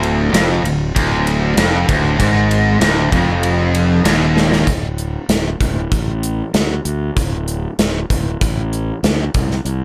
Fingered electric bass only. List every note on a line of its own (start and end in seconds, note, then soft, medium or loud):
0.00 0.30 D1 medium
0.33 0.62 F1 medium
0.64 0.93 D1 medium
0.96 1.54 D1 medium
1.57 1.86 F1 medium
1.89 2.17 D1 medium
2.20 2.77 G#1 medium
2.81 3.10 D1 medium
3.12 4.01 F1 loud
4.05 4.63 D#1 medium
4.67 5.16 D1 medium
5.29 5.54 D1 medium
5.60 5.85 D1 medium
5.92 6.41 A1 medium
6.54 6.78 D2 medium
6.85 7.10 D2 medium
7.16 7.66 D1 medium
7.79 8.03 D1 medium
8.10 8.34 D1 medium
8.41 8.90 A1 medium
9.03 9.28 D2 medium
9.35 9.59 C2 medium
9.65 9.84 C2 medium